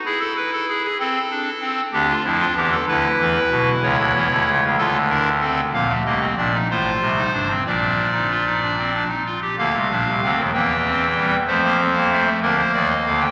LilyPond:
<<
  \new Staff \with { instrumentName = "Pipe organ" } { \time 6/8 \key d \minor \tempo 4. = 63 << { gis'16 a'16 b'16 a'16 gis'16 gis'16 a'4. | g'16 f'16 e'16 f'16 g'16 a'16 b'4. | cis''4. a'8 bes'8 a'8 | \key bes \major f''8 ees''8 d''8 c''4. |
d''2~ d''8 r8 | f''4. g''4. | c''4. bes'16 c''16 d''16 ees''16 f''16 g''16 | } \\ { e'4. c'8 d'8 c'8 | d'4. e'4.~ | e'4. f'8 d'8 c'8 | bes16 a16 bes16 c'16 d'16 ees'16 f'8. ees'16 d'16 c'16 |
d'8. ees'16 f'16 ees'16 d'16 c'16 d'16 ees'16 f'16 g'16 | bes8 d'8 c'8 bes8 c'8 g8 | a16 bes16 c'16 bes16 a16 a16 bes4. | } >> }
  \new Staff \with { instrumentName = "Pipe organ" } { \clef bass \time 6/8 \key d \minor r2. | <d, d>8 <f, f>8 <e, e>8 <d, d>8 <e, e>8 <b,, b,>8 | <cis, cis>16 <d, d>16 <e, e>16 <d, d>16 <cis, cis>16 <cis, cis>16 <d, d>4. | \key bes \major <bes,, bes,>8 <c, c>8 <bes,, bes,>8 <a,, a,>8 <c, c>8 <g,, g,>8 |
<bes,, bes,>2~ <bes,, bes,>8 r8 | <d, d>16 <c, c>16 <bes,, bes,>16 <c, c>16 <d, d>16 <ees, ees>16 <e, e>4. | <f, f>4. <d, d>8 <ees, ees>8 <d, d>8 | }
>>